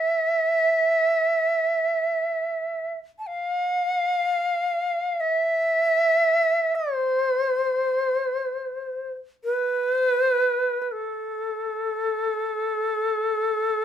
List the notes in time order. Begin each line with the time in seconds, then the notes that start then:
Already playing: E5
3.19 A5
3.27 F5
5.20 E5
6.75 C5
9.44 B4
10.82 B4
10.92 A4